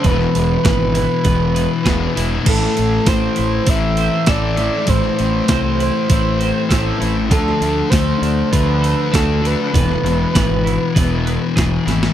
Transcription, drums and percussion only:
0.04 kick loud
0.04 open hi-hat medium
0.21 snare soft
0.35 open hi-hat medium
0.65 kick loud
0.65 snare loud
0.65 open hi-hat medium
0.95 open hi-hat medium
1.25 kick loud
1.25 open hi-hat medium
1.56 open hi-hat medium
1.86 kick loud
1.86 snare loud
1.86 open hi-hat medium
2.17 open hi-hat medium
2.46 kick loud
2.46 crash loud
2.63 snare soft
2.77 open hi-hat medium
3.06 kick loud
3.06 snare loud
3.06 open hi-hat medium
3.36 open hi-hat medium
3.67 kick loud
3.67 open hi-hat loud
3.97 open hi-hat medium
4.26 kick loud
4.26 snare loud
4.26 open hi-hat medium
4.57 open hi-hat medium
4.87 kick loud
4.87 open hi-hat medium
5.04 snare soft
5.19 open hi-hat medium
5.48 kick loud
5.48 snare loud
5.48 open hi-hat medium
5.80 open hi-hat medium
6.10 kick loud
6.10 open hi-hat loud
6.41 open hi-hat medium
6.71 kick loud
6.71 snare loud
6.71 open hi-hat medium
7.02 open hi-hat medium
7.31 kick loud
7.31 open hi-hat medium
7.48 snare soft
7.62 open hi-hat medium
7.92 kick loud
7.92 snare loud
7.92 open hi-hat loud
8.23 open hi-hat medium
8.53 kick loud
8.53 open hi-hat loud
8.84 open hi-hat medium
9.14 kick loud
9.14 snare loud
9.14 open hi-hat medium
9.45 open hi-hat medium
9.74 kick loud
9.74 open hi-hat medium
9.92 snare soft
10.06 open hi-hat medium
10.35 kick loud
10.35 snare loud
10.35 open hi-hat medium
10.67 open hi-hat medium
10.96 kick loud
10.96 open hi-hat medium
11.27 open hi-hat medium
11.57 kick loud
11.57 snare loud
11.57 open hi-hat medium
11.88 snare medium
11.88 open hi-hat medium
12.03 snare loud

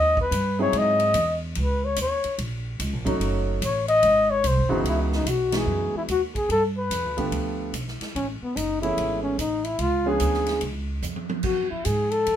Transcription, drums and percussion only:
0.17 kick medium
0.32 hi-hat pedal medium
0.32 ride medium
0.73 ride medium
1.00 ride medium
1.14 hi-hat pedal medium
1.14 ride medium
1.55 ride medium
1.96 hi-hat pedal medium
1.96 ride medium
2.24 ride soft
2.38 ride medium
2.80 hi-hat pedal medium
2.80 ride medium
3.06 kick medium
3.06 ride medium
3.21 ride medium
3.62 hi-hat pedal medium
3.62 ride medium
3.88 ride medium
4.03 ride medium
4.44 hi-hat pedal medium
4.44 ride medium
4.85 ride medium
5.12 snare soft
5.26 hi-hat pedal medium
5.26 ride medium
5.52 snare medium
5.52 ride medium
6.08 hi-hat pedal soft
6.08 ride medium
6.35 kick medium
6.35 ride soft
6.50 ride medium
6.91 hi-hat pedal medium
6.91 ride medium
7.18 ride soft
7.32 ride medium
7.74 hi-hat pedal soft
7.74 ride medium
7.88 snare soft
8.01 snare soft
8.01 ride soft
8.16 ride medium
8.57 hi-hat pedal medium
8.57 ride medium
8.83 ride soft
8.98 ride medium
9.39 hi-hat pedal soft
9.39 ride medium
9.64 ride soft
9.79 ride medium
10.20 hi-hat pedal medium
10.20 ride medium
10.34 snare soft
10.46 snare soft
10.46 ride soft
10.61 ride medium
11.02 hi-hat pedal medium
11.02 high tom soft
11.16 high tom medium
11.29 high tom medium
11.43 kick medium
11.43 crash medium
11.85 hi-hat pedal medium
11.85 ride medium
12.11 ride soft
12.27 ride medium

